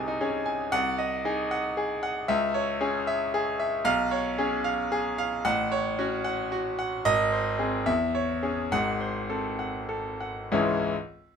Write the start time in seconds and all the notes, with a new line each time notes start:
Already playing: C2 C3 D#4 G#4 D#5 G#5
0.08 D#4
0.21 C#4 G#4
0.46 G#5
0.72 C2 F#5
0.98 D#5
1.25 D#4 G#4
1.51 F#5
1.77 G#4
2.03 F#5
2.28 C#2 E5
2.54 C#5
2.81 C#4 G#4
3.07 E5
3.34 G#4
3.60 E5
3.85 B1 F5
4.11 C#5
4.38 C#4 G#4
4.64 F5
4.92 G#4
5.18 F5
5.45 A1 F#5
5.72 C#5
5.99 C#4 F#4
6.24 F#5
6.52 F#4
6.79 F#5
7.05 G#1 D#5
7.32 C5
7.59 C4 G#4
7.86 E2 E5
8.15 C#5
8.43 C#4 G#4
8.71 G#1 G#2 F#5
9.01 C5
9.30 C4 A4
9.59 F#5
9.89 A4
10.20 F#5
10.52 C#2 G#2 E3 G#3 C#4 E4